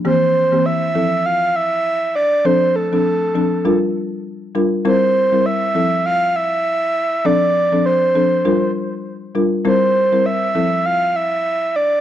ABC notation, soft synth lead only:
X:1
M:4/4
L:1/16
Q:"Swing 16ths" 1/4=100
K:F
V:1 name="Soft synth lead"
c4 e4 f2 e4 d2 | c2 A A6 z6 z | c4 e4 f2 e6 | d4 c6 z6 |
c4 e4 f2 e4 d2 |]